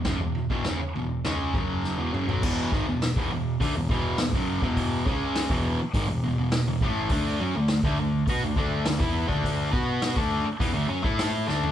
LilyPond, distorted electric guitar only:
\new Staff \with { instrumentName = "Distorted electric guitar" } { \clef bass \time 4/4 \key e \mixolydian \tempo 4 = 103 <fis, cis>16 <e, b,>8 <e, b,>16 <fis, cis>16 r16 <e, b,>8 <cis gis cis'>8 <fis, cis fis>8. <e, b,>16 <fis, cis>16 <b, fis>16 | <e, b, e>8 <gis, dis>16 <e, b,>8 <e, b,>16 <e, b,>8 <d a>16 <e, b,>16 <e, b, e>8 <e, b,>16 <fis, cis fis>8 <e, b, e>16~ | <e, b, e>8 <cis gis cis'>8. <e, b, e>8 r16 <gis, dis>16 <e, b,>16 <e, b,>16 <e, b,>8 <e, b,>16 <a, e a>8 | <d a d'>8 <fis cis'>16 <d a>8 <d a>16 <d a>8 <b fis'>16 <d a>16 <d a d'>8 <d a>16 <e b e'>8 <d a d'>16~ |
<d a d'>8 <b fis' b'>8. <d a d'>8 r16 <e b>16 <d a>16 <fis cis'>16 <a e' a'>8. <d a d'>8 | }